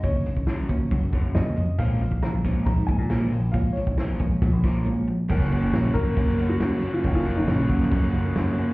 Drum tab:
CC |----------------|----------------|----------------|x-x-x-x-x-x-x-x-|
HH |o-o-o-o-o-o-o-o-|o-o-o-o-o-o-o-o-|o-o-o-o-o-o-----|----------------|
SD |----o-------o---|----o-------o---|----o-----------|----o-------o---|
BD |o--o--o-o-o-----|o--o--o-o-o-----|o--o--o-o-o-----|o-----o-o-------|

CC |x-x-x-x-x-x-x-x-|
HH |----------------|
SD |----o--o----o---|
BD |o-----o-o-------|